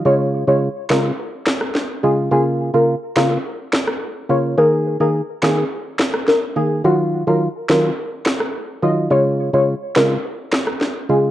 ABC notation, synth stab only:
X:1
M:4/4
L:1/16
Q:1/4=106
K:Dbmix
V:1 name="Synth stab" clef=bass
[D,A,F]3 [D,A,F] z2 [D,A,F] z6 z [D,A,F]2 | [D,B,F]3 [D,B,F] z2 [D,B,F] z6 z [D,B,F]2 | [E,B,A]3 [E,B,A] z2 [E,B,A] z6 z [E,B,A]2 | [E,G,F]3 [E,G,F] z2 [E,G,F] z6 z [E,G,F]2 |
[D,A,F]3 [D,A,F] z2 [D,A,F] z6 z [D,A,F]2 |]